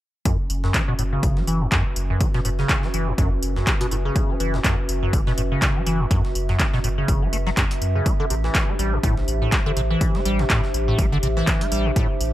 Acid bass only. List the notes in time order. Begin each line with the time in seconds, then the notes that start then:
0.25 F#2
0.64 F#2
0.74 F#3
0.88 B2
0.99 A2
1.13 C#3
1.37 F#3
1.47 E3
1.61 F#2
1.72 F#2
2.10 F#2
2.21 F#3
2.34 B2
2.45 A2
2.59 C#3
2.83 F#3
2.94 E3
3.08 F#2
3.18 F#2
3.56 F#2
3.67 F#3
3.81 B2
3.91 A2
4.05 C#3
4.29 F#3
4.40 E3
4.54 F#2
4.64 F#2
5.03 F#2
5.13 F#3
5.27 B2
5.38 A2
5.52 C#3
5.76 F#3
5.86 E3
6.00 F#2
6.11 F#2
6.49 F#2
6.60 F#3
6.74 B2
6.84 A2
6.98 C#3
7.22 F#3
7.33 A3
7.47 F#3
7.57 F#2
7.95 C#3
8.06 A3
8.20 D3
8.30 C3
8.44 E3
8.69 A3
8.79 G3
8.93 A2
9.04 A2
9.42 A2
9.52 A3
9.66 D3
9.77 C3
9.90 E3
10.15 A3
10.25 G3
10.39 A2
10.50 A2
10.88 A2
10.99 A3
11.12 D3
11.23 C3
11.37 E3
11.61 A3
11.72 G3
11.86 A2
11.96 A2